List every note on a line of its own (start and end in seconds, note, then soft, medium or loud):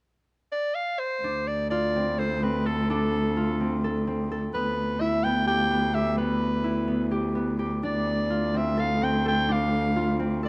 0.52 0.76 D5 medium
0.75 1.01 F5 medium
0.99 1.49 C5 medium
1.23 4.53 D2 medium
1.23 2.89 D4 medium
1.47 1.70 D5 medium
1.70 3.36 F4 medium
1.70 2.20 D5 medium
1.96 2.42 C4 medium
2.18 2.66 A4 medium
2.18 2.45 C5 medium
2.43 3.60 C4 medium
2.43 2.67 B4 medium
2.66 2.89 A4 medium
2.66 3.84 A4 medium
2.90 5.70 D4 medium
2.90 3.80 A4 medium
3.37 5.07 F4 medium
3.60 4.07 C4 medium
3.84 4.31 A4 medium
4.07 4.61 C4 medium
4.31 6.51 A4 medium
4.53 7.83 D2 medium
4.53 5.24 B3 medium
4.53 5.02 B4 medium
5.00 6.63 E4 medium
5.00 5.25 E5 medium
5.24 5.71 B3 medium
5.24 5.47 G5 medium
5.47 5.94 G4 medium
5.47 5.96 G5 medium
5.71 6.17 B3 medium
5.94 7.11 G4 medium
5.94 6.17 E5 medium
6.18 6.87 B3 medium
6.18 7.08 B4 medium
6.64 8.36 E4 medium
6.88 7.35 B3 medium
7.11 7.59 G4 medium
7.35 8.60 B3 medium
7.59 9.94 G4 medium
7.83 10.49 D2 medium
7.83 9.48 D4 medium
7.83 8.58 D5 medium
8.30 9.96 F4 medium
8.54 9.01 C4 medium
8.54 8.82 E5 medium
8.77 9.25 A4 medium
8.77 9.05 F5 medium
9.01 10.19 C4 medium
9.01 9.26 G5 medium
9.26 10.43 A4 medium
9.26 9.53 G5 medium
9.49 10.49 D4 medium
9.49 10.20 F5 medium
9.96 10.49 F4 medium
10.19 10.49 C4 medium
10.43 10.49 A4 medium
10.43 10.49 D5 medium